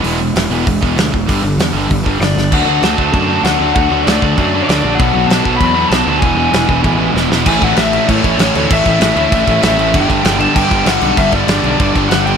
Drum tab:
CC |--------|--------|x-x-x-x-|x-x-x-x-|
HH |o-o-o-o-|o-o-o-o-|--------|--------|
SD |--o---o-|--o---oo|--o---o-|--o---o-|
BD |----oo-o|o---oo--|o--oo---|o--oo---|

CC |x-x-x-x-|x-x-x---|xxxxxxxx|xxxxxxxx|
HH |--------|--------|--------|--------|
SD |--o---o-|--o---oo|--o---o-|--o---o-|
BD |o--oo---|o--oo---|oo--oo--|oo--oo--|

CC |xxxxxxxx|xxxxxxxx|
HH |--------|--------|
SD |--o---o-|--o---o-|
BD |oo--oo--|oo--oo--|